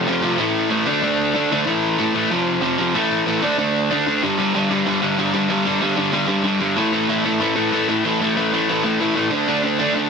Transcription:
Already playing: A3
0.07 F2 C3 F3
0.23 F2 C3 F3
0.38 A2 E3 A3
0.70 A2 E3 A3
0.86 D3 A3 D4
1.02 D3 A3 D4
1.34 D3 A3 D4
1.51 D3 A3 D4
1.66 A2 E3 A3
1.98 A2 E3 A3
2.14 A2 E3 A3
2.31 F2 C3 F3
2.61 F2 C3 F3
2.78 F2 C3 F3
2.94 A2 E3 A3
3.26 A2 E3 A3
3.42 D3 A3 D4
3.58 D3 A3 D4
3.91 D3 A3 D4
4.07 D3 A3 D4
4.22 G2 D3 G3
4.38 G2 D3 G3
4.54 G2 D3 G3
4.70 G2 D3 G3
4.86 G2 D3 G3
5.02 G2 D3 G3
5.18 G2 D3 G3
5.34 G2 D3 G3
5.50 G2 D3 G3
5.66 G2 D3 G3
5.82 G2 D3 G3
5.97 G2 D3 G3
6.13 G2 D3 G3
6.28 G2 D3 G3
6.44 G2 D3 G3
6.61 G2 D3 G3
6.77 A2 E3 A3
6.93 A2 E3 A3
7.09 A2 E3 A3
7.25 A2 E3 A3
7.40 A2 E3 A3
7.56 A2 E3 A3
7.72 A2 E3 A3
7.89 A2 E3 A3
8.05 A2 E3 A3
8.21 A2 E3 A3
8.36 A2 E3 A3
8.53 A2 E3 A3
8.68 A2 E3 A3
8.83 A2 E3 A3
9.00 A2 E3 A3
9.15 A2 E3 A3
9.30 D3 A3 D4
9.48 D3 A3 D4
9.63 D3 A3 D4
9.79 D3 A3 D4
9.94 D3 A3 D4

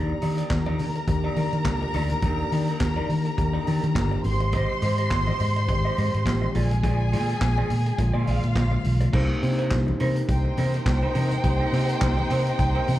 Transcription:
Already playing: D#2 D#3 A#3 D4 D#4 G4 A#4 D5 A#5
0.10 muted conga
0.22 D#3 D#4 G4 D5, open hi-hat, high conga
0.38 D#4 G4 D5, closed hi-hat
0.50 D#2, muted clean electric guitar stroke, kick, snare, clap, closed hi-hat, muted conga
0.66 D#4 G4 D5, muted conga, high conga
0.79 D#3, muted clean electric guitar stroke, open hi-hat, low conga
0.95 muted clean electric guitar stroke, closed hi-hat
1.07 D#2 D#3 A#3 D4 G4, muted clean electric guitar stroke, kick, closed hi-hat, muted conga
1.24 D#4 G4 D5
1.36 D#3 D#4 G4 D5, open hi-hat, high conga
1.53 D#3, muted clean electric guitar stroke, closed hi-hat
1.65 C#2 D#3 A#3 D4 F4, muted clean electric guitar stroke, kick, snare, clap, closed hi-hat, muted conga
1.73 G4
1.82 muted clean electric guitar stroke, muted conga
1.94 D2 D#4 G4 D5, open hi-hat, high conga
2.10 muted clean electric guitar stroke, closed hi-hat, low conga
2.22 D#2 D#3 A#3 D4 D#4 G4 D5, kick, closed hi-hat, muted conga, low conga
2.40 muted conga
2.52 D#3 D#4 G4 D5, open hi-hat, high conga
2.68 D#4 G4 D5, closed hi-hat
2.80 D#2, muted clean electric guitar stroke, kick, snare, clap, closed hi-hat, muted conga
2.96 D#4 G4 D5, muted conga, high conga
3.09 D#3, muted clean electric guitar stroke, open hi-hat, low conga
3.25 muted clean electric guitar stroke, closed hi-hat
3.37 D#2 D#3 A#3 D4 G4, muted clean electric guitar stroke, kick, closed hi-hat, muted conga
3.53 D#4 G4 D5, muted conga
3.67 D#3 D#4 G4 D5, open hi-hat, high conga
3.83 D#3, muted clean electric guitar stroke, closed hi-hat
3.94 G1 D#3 A#3 D4 G4, muted clean electric guitar stroke, kick, snare, clap, closed hi-hat, muted conga
4.11 muted clean electric guitar stroke, muted conga
4.23 G#1 D#3 G#3 C4 F#4 C5 C6, open hi-hat, high conga
4.31 G4
4.40 muted clean electric guitar stroke, closed hi-hat, low conga
4.52 G4 C5 D#5, kick, closed hi-hat, muted conga, low conga
4.70 muted conga
4.82 G#2 G4 C5 D#5, open hi-hat, high conga
4.98 G4 C5 D#5, closed hi-hat
5.10 G#1, kick, snare, clap, closed hi-hat, muted conga
5.27 G4 C5 D#5, muted conga, high conga
5.40 G#2, muted clean electric guitar stroke, open hi-hat, low conga
5.56 muted clean electric guitar stroke, closed hi-hat
5.68 G#1 D#3 G#3 C4 G4, muted clean electric guitar stroke, kick, closed hi-hat
5.85 G4 C5 D#5, muted conga
5.97 G#2 G4 C5 D#5, open hi-hat, high conga
6.13 G#2, muted clean electric guitar stroke, closed hi-hat
6.25 A1 D#3 G#3 C4 G4, muted clean electric guitar stroke, kick, snare, clap, closed hi-hat, muted conga
6.42 muted clean electric guitar stroke, muted conga
6.54 A#1 D3 G#3 A#3 F4 G#4 D5 G#5, open hi-hat, high conga
6.71 muted clean electric guitar stroke, closed hi-hat, low conga
6.83 F4 G#4 D5, kick, closed hi-hat, low conga
7.01 muted conga
7.12 A#2 F4 G#4 D5, open hi-hat, high conga
7.29 F4 G#4 D5, closed hi-hat
7.41 A#1, muted clean electric guitar stroke, kick, snare, clap, closed hi-hat
7.58 F4 G#4 D5, muted conga, high conga
7.70 A#2, muted clean electric guitar stroke, open hi-hat, low conga
7.86 muted clean electric guitar stroke, closed hi-hat
7.98 A#1 D3 G#3 A#3 F4, muted clean electric guitar stroke, kick, closed hi-hat
8.13 A#2 F4 G#4 D5, muted conga
8.26 A#1 F4 G#4 D5 F5, open hi-hat, high conga
8.43 A#2, muted clean electric guitar stroke, closed hi-hat
8.54 A#1 D3 G#3 A#3 F4, muted clean electric guitar stroke, kick, snare, clap, closed hi-hat, muted conga
8.71 muted clean electric guitar stroke
8.84 B1, open hi-hat, high conga
9.00 muted clean electric guitar stroke, closed hi-hat, low conga
9.13 C2 A#3 C4 D#4 G4 A#4 C5, kick, crash, low conga
9.41 C3 A#3 C4 D4 G4 C5, muted clean electric guitar stroke, open hi-hat
9.49 D#4
9.58 D#4 A#4 C5, closed hi-hat
9.71 C2, kick, snare, clap, closed hi-hat, muted conga
9.87 muted clean electric guitar stroke, muted conga, high conga
10.00 C3 D#4 A#4 C5, open hi-hat, low conga
10.16 muted clean electric guitar stroke, closed hi-hat
10.28 C2 D#4 C5 G5, muted clean electric guitar stroke, kick, closed hi-hat, muted conga
10.45 muted clean electric guitar stroke, muted conga
10.57 C3 D#4 A#4 C5, open hi-hat, high conga
10.74 muted clean electric guitar stroke, closed hi-hat
10.86 C2, muted clean electric guitar stroke, kick, snare, clap, closed hi-hat, muted conga
11.02 D#4 A#4 C5, muted conga
11.15 C3 D#4 A#4 C5, open hi-hat, high conga
11.31 muted clean electric guitar stroke, closed hi-hat, low conga
11.43 C2 A#3 C4 D#4 G4 C5, muted clean electric guitar stroke, kick, closed hi-hat, muted conga, low conga
11.60 D#4 A#4 C5
11.73 C3 A#3 C4 D#4 G4 A#4 C5, open hi-hat
11.89 muted clean electric guitar stroke, closed hi-hat
12.01 C2, kick, snare, clap, closed hi-hat, muted conga
12.18 muted clean electric guitar stroke, muted conga, high conga
12.30 C3 D#4 A#4 C5, open hi-hat, low conga
12.47 muted clean electric guitar stroke, closed hi-hat
12.59 C2, muted clean electric guitar stroke, kick, closed hi-hat, muted conga
12.75 D#4 A#4 C5, muted conga
12.87 C3, muted clean electric guitar stroke, open hi-hat, high conga

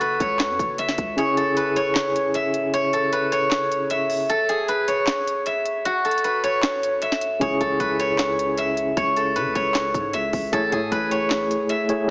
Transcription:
Already playing: F#1 F#4 A4 C#5 E5
0.01 B4, closed hi-hat
0.20 C#2 C#5, kick, closed hi-hat
0.39 snare, clap, closed hi-hat
0.50 F#2
0.59 F#1, kick, closed hi-hat
0.78 F#1 E5, closed hi-hat
0.89 snare
0.98 C#2, kick, closed hi-hat
1.16 C#3 C#4 E4 G#4 C#5, closed hi-hat
1.37 A4, closed hi-hat
1.57 B4, closed hi-hat
1.76 C#5, closed hi-hat
1.95 snare, clap, closed hi-hat
2.16 closed hi-hat
2.34 E5, closed hi-hat
2.54 closed hi-hat
2.74 C#5, closed hi-hat
2.93 A4, closed hi-hat
3.13 B4, closed hi-hat
3.32 C#5, closed hi-hat
3.51 snare, clap, closed hi-hat
3.72 closed hi-hat
3.90 E5, closed hi-hat
4.10 open hi-hat
4.30 A4, closed hi-hat
4.49 G#4, closed hi-hat
4.68 B4, closed hi-hat
4.88 C#5, closed hi-hat
5.07 snare, clap, closed hi-hat
5.27 closed hi-hat
5.46 E5, closed hi-hat
5.66 closed hi-hat
5.85 F#4, closed hi-hat
6.05 A4, closed hi-hat
6.11 closed hi-hat
6.18 closed hi-hat
6.24 B4, closed hi-hat
6.44 C#5, closed hi-hat
6.62 snare, clap, closed hi-hat
6.83 closed hi-hat
7.02 E5, closed hi-hat
7.12 snare
7.21 closed hi-hat
7.40 C#2 C#3 C#4 E4 G#4 C#5, kick, closed hi-hat
7.61 C#2 A4, kick, closed hi-hat
7.80 C#2 B4, kick, closed hi-hat
8.00 C#5, closed hi-hat
8.18 snare, clap, closed hi-hat
8.39 closed hi-hat
8.58 E5, closed hi-hat
8.77 closed hi-hat
8.97 C#2 C#5, kick, closed hi-hat
9.16 A4, closed hi-hat
9.36 C#3 B4, closed hi-hat
9.46 C#2
9.55 C#2 C#5, kick, closed hi-hat
9.74 snare, clap, closed hi-hat
9.94 G#2, kick, closed hi-hat
10.13 C#2 E5, closed hi-hat
10.33 C#2, kick, open hi-hat
10.52 A1 A3 E4 G#4 A4 C#5, kick, closed hi-hat
10.72 A2 G#4, kick, closed hi-hat
10.92 A1 B4, kick, closed hi-hat
11.11 C#5, closed hi-hat
11.30 snare, clap, closed hi-hat
11.51 closed hi-hat
11.69 E5, closed hi-hat
11.88 A3 E4 G#4 C#5, closed hi-hat
12.07 F#3

